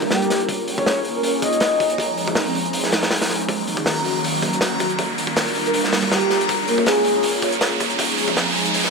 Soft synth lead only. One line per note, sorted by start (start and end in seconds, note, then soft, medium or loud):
0.11 0.40 G4 medium
0.78 1.00 C#5 medium
1.15 1.21 A#4 medium
1.24 1.30 A#4 medium
1.43 1.95 D#5 medium
5.65 5.71 A#4 medium
5.74 5.80 A#4 medium
6.11 6.40 G4 medium
6.68 6.85 A#4 medium
6.86 7.24 G#4 medium